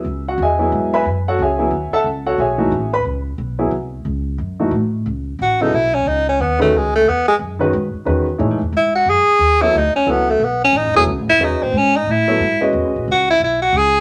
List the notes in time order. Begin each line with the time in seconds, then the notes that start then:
0.04 C#2
0.28 F#4 F#5
0.38 E2
0.42 G#4 D#5 E5 G#5
0.59 F#3 B3 E4 G#4
0.72 G#2
0.93 B4 E5 G#5 B5
1.05 F#2
1.28 F#4 A4 C#5 F#5
1.39 C#2 G#4 G#5
1.43 C#5 E5
1.58 F#3 B3 E4 G#4
1.71 D#2
1.91 A4 E5 F#5 A5, muted upright bass stroke
2.04 C#2
2.26 F#4 A4 C#5 F#5
2.38 B1 G#4 C#5 E5 G#5
2.58 E3 A3 D#4 F#4
2.72 A1
2.93 B4 B5
3.05 C#2
3.38 B1
3.59 F#3 B3 E4 G#4
3.71 C2
4.05 C#2
4.38 F#2
4.60 E3 A3 D#4 F#4
4.71 A2
5.06 C#2
5.39 A1 F#4
5.61 C#3 F#3 B3 D#4 E4 A4
5.73 B1 E4
5.94 C#4
6.06 C#2 D#4
6.29 C#4
6.39 D#2 B3
6.59 D#3 G#3 A3 C#4 F#4 B4
6.73 C#2
6.77 G#3
6.95 A3
7.06 E2 B3
7.28 G#3
7.39 F#2
7.59 D#3 G#3 C#4 F#4 B4
7.73 G#2
7.93 muted upright bass stroke
8.05 E2 D#3 G#3 C#4 F#4 B4
8.38 A2 E3 A3 D#4 G#4 C#5
8.51 G#2
8.61 E2
8.72 G#2
8.77 E4
8.95 F#4
9.06 F#2 G#4
9.39 D#2
9.61 F#3 B3 E4 A4 C#5
9.73 D2
9.77 D#4
9.94 C#4, muted upright bass stroke
10.06 C#2 F#3 B3 E4 A4 C#5
10.11 B3
10.30 A3
10.39 B1
10.44 B3
10.64 C#4
10.73 A1
10.77 D#4
10.85 F#1
10.95 E1 F#3 B3 E4 G#4 A4 C#5
11.07 C#2
11.18 A1
11.28 F#1 E4
11.39 E2 G#3 C#4 F#4 B4 D#5
11.44 D#4
11.50 C#2
11.62 A1 C4
11.72 G#2
11.78 C#4
11.96 D#4
12.06 A2
12.11 E4
12.28 F#3 B3 E4 A4 C#5
12.40 G#2
12.61 G#3 C#4 F#4 B4 D#5
12.73 E2
12.85 C#2
12.96 A1
13.08 C#2 F#4
13.30 E4
13.40 B1 E4
13.62 F#4
13.73 C#2
13.77 G#4